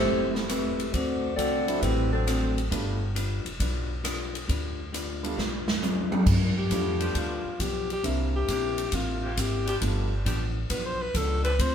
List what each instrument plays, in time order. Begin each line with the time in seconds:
Already playing: saxophone section A3 E4 G4 C5
0.03 upright bass E1, hollow-body jazz guitar A2 G3 C4 E4
0.34 grand piano G3 A3 B3 C4 E4, snare
0.49 hollow-body jazz guitar A2 G3 C4 E4, saxophone section A3 E4 G4 B4, cross-stick, hi-hat pedal, ride
0.80 ride
0.93 upright bass D2, hollow-body jazz guitar D3 A3 C4 F#4, saxophone section A3 D4 F#4 C5, kick, ride
1.36 upright bass C2, hollow-body jazz guitar D3 A3 C4 F#4, saxophone section C4 F#4 A4 D5, hi-hat pedal, ride
1.67 grand piano F#3 A3 C4 D4 E4, ride
1.81 upright bass A1, hollow-body jazz guitar D3 A3 C4 F#4, saxophone section G3 C4 E4 B4, kick, ride
2.12 saxophone section F#3 C4 D4 A4
2.27 hollow-body jazz guitar D3 A3 C4 F#4, cross-stick, hi-hat pedal, ride
2.58 ride
2.70 upright bass G1, hollow-body jazz guitar G3 D4 F4 B4, grand piano G3 A3 B3 D4 F4, kick, ride
3.15 hollow-body jazz guitar G3 D4 F4 B4, hi-hat pedal, ride
3.45 upright bass F1, ride
3.59 upright bass B1, hollow-body jazz guitar G3 D4 F4 B4, kick, ride
4.03 hollow-body jazz guitar G3 D4 F4 B4, cross-stick, hi-hat pedal, ride
4.35 ride
4.48 upright bass D2, hollow-body jazz guitar G3 D4 F4 B4, kick, ride
4.93 hollow-body jazz guitar G3 D4 F4 B4, hi-hat pedal, ride
5.23 grand piano G3 A3 B3 D4 F4, ride
5.36 upright bass B1, hollow-body jazz guitar G3 D4 F4 B4, snare
5.68 snare
5.82 hollow-body jazz guitar G3 D4 F4 B4, hi-hat pedal, high tom
6.11 grand piano G3 A3 B3 D4 G4, muted upright bass stroke, high tom
6.26 upright bass G2, hollow-body jazz guitar G2 F3 B3 D4, kick, crash
6.58 alto saxophone G4
6.70 upright bass F2, hollow-body jazz guitar G2 F3 B3 D4, grand piano G3 A3 B3 D4 F4, kick, hi-hat pedal, ride
7.00 saxophone section F3 B3 D4 G4, ride
7.15 upright bass D2, hollow-body jazz guitar G2 F3 B3, alto saxophone F4, kick, ride
7.19 hollow-body jazz guitar D4
7.44 muted upright bass stroke
7.59 upright bass B1, hollow-body jazz guitar G2 F3 B3 D4, alto saxophone G4, kick, hi-hat pedal, ride
7.90 alto saxophone G4, ride
8.03 upright bass C2, hollow-body jazz guitar C3 G3 A#3 E4, grand piano G3 A#3 C4 D4 E5, kick, ride
8.36 alto saxophone G4
8.48 upright bass A#1, hollow-body jazz guitar C3 G3 A#3 E4, saxophone section E3 A#3 C4 G4, kick, hi-hat pedal, ride
8.78 ride
8.92 upright bass A1, hollow-body jazz guitar C3 G3 A#3 E4, alto saxophone F4, kick, ride
9.22 saxophone section E3 A#3 C4 G4
9.36 upright bass G#1, hollow-body jazz guitar C3 G3 A#3 E4, alto saxophone G4, kick, hi-hat pedal, ride
9.65 saxophone section F3 B3 D4 G4, alto saxophone G4, ride
9.81 upright bass G1, hollow-body jazz guitar G2 F3 B3 D4, grand piano G3 A3 B3 D4 F4, kick, ride
10.25 upright bass A1, hollow-body jazz guitar G2 F3 B3 D4, saxophone section F3 B3 D4 G4, kick, hi-hat pedal, ride
10.70 upright bass B1, hollow-body jazz guitar G2 F3 B3 D4, alto saxophone B4, kick, ride
10.86 alto saxophone C5
11.02 alto saxophone B4
11.14 upright bass C#2, hollow-body jazz guitar G2 F3 B3 D4, alto saxophone A4, kick, hi-hat pedal, ride
11.43 saxophone section F3 C4 D4 A4, alto saxophone B4, ride
11.59 upright bass D2, hollow-body jazz guitar D3 A3 C4 F4, alto saxophone C5, kick, ride